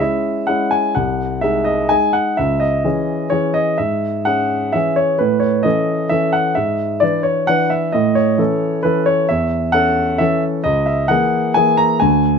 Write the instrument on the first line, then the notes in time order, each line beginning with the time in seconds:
grand piano
0.00 G#3 C#4 E4 E5
0.47 G#3 C#4 E4 F#5
0.71 G#5
0.95 C2 F#5
1.41 G#3 D#4 G#4 E5
1.65 D#5
1.89 G#3 D#4 G#4 G#5
2.13 F#5
2.37 C#2 E5
2.60 D#5
2.84 E3 C#4 G#4
3.30 E3 C#4 G#4 C#5
3.54 D#5
3.78 G#2 E5
4.25 C#4 G#4 F#5
4.73 E3 C#4 G#4 E5
4.96 C#5
5.18 A2 B4
5.40 C#5
5.63 E3 C#4 A4 D#5
6.09 E3 C#4 A4 E5
6.33 F#5
6.55 G#2 E5
7.00 E3 D4 B4 D5
7.23 C#5
7.47 E3 D4 B4 F#5
7.70 E5
7.92 A2 D#5
8.15 C#5
8.38 E3 C#4 A4
8.83 E3 C#4 A4 B4
9.06 C#5
9.29 E2 E5
9.72 C#4 A4 F#5
10.18 E3 C#4 A4 E5
10.64 C#2 D#5
10.86 E5
11.08 E3 A#3 G#4 F#5
11.54 E3 A#3 G#4 G#5
11.77 A#5
12.00 D2 G#5